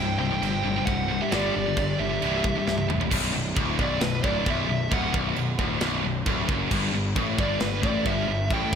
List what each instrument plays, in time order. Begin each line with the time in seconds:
Already playing: picked electric bass C1, distorted electric guitar C2 G2, lead electric guitar C5 G5
0.19 picked electric bass C1, distorted electric guitar C2 G2, lead electric guitar C5 G5
0.32 distorted electric guitar C2 G2
0.42 picked electric bass G1, distorted electric guitar C2 G2, crash
0.64 picked electric bass G1, distorted electric guitar C2 G2
0.78 distorted electric guitar C2 G2
0.86 picked electric bass C1, distorted electric guitar C2 G2, lead electric guitar C5 F#5, kick, crash
1.11 distorted electric guitar C2 G2
1.21 distorted electric guitar C2 G2, lead electric guitar G4 E5
1.31 picked electric bass G1, distorted electric guitar G2 D3 G3, lead electric guitar G4 D5, snare, crash
1.56 picked electric bass G1, distorted electric guitar G2 D3
1.67 distorted electric guitar G2 D3
1.77 picked electric bass G1, distorted electric guitar G2 D3, kick, crash
1.99 picked electric bass G1, distorted electric guitar G2 D3, lead electric guitar G4 E5
2.13 distorted electric guitar G2 D3
2.22 picked electric bass C1, distorted electric guitar C2 G2 C3, crash
2.44 distorted electric guitar C2 G2, kick
2.57 distorted electric guitar C2 G2
2.67 picked electric bass C1, distorted electric guitar C2 G2, snare
2.78 high tom
2.89 picked electric bass A1, distorted electric guitar C2 G2, mid tom
3.01 distorted electric guitar C2 G2, floor tom
3.11 picked electric bass B0, distorted electric guitar B1, kick, crash, china
3.34 picked electric bass B0, distorted electric guitar B1
3.56 picked electric bass D1, distorted electric guitar D2, kick, china
3.79 picked electric bass B0, distorted electric guitar B1, lead electric guitar D5, kick
4.01 picked electric bass B0, distorted electric guitar B1, lead electric guitar B4, snare, china
4.24 picked electric bass C#1, distorted electric guitar C#2, lead electric guitar D5, kick
4.46 picked electric bass B0, distorted electric guitar B1, lead electric guitar E5, kick, china
4.69 picked electric bass B0, distorted electric guitar B1
4.91 picked electric bass D1, distorted electric guitar D2, lead electric guitar F#5, kick, china
5.14 picked electric bass B0, distorted electric guitar B1, kick
5.36 picked electric bass B0, distorted electric guitar B1, china
5.59 picked electric bass D1, distorted electric guitar D2, kick
5.79 picked electric bass B0, distorted electric guitar B1, snare, china
6.04 picked electric bass B0, distorted electric guitar B1
6.26 picked electric bass D1, distorted electric guitar D2, kick, china
6.49 picked electric bass F#1, distorted electric guitar F#2, kick
6.71 picked electric bass G1, distorted electric guitar G2, kick, crash, china
6.92 picked electric bass G1, distorted electric guitar G2
7.16 picked electric bass A1, distorted electric guitar A2, kick, china
7.38 picked electric bass G1, distorted electric guitar G2, lead electric guitar D5, kick
7.60 picked electric bass G1, distorted electric guitar G2, lead electric guitar B4, snare, china
7.82 picked electric bass A1, distorted electric guitar A2, lead electric guitar D5, kick
8.04 picked electric bass G1, distorted electric guitar G2, lead electric guitar E5, kick, china
8.27 picked electric bass G1, distorted electric guitar G2
8.50 picked electric bass A1, distorted electric guitar A2, lead electric guitar G5, kick, china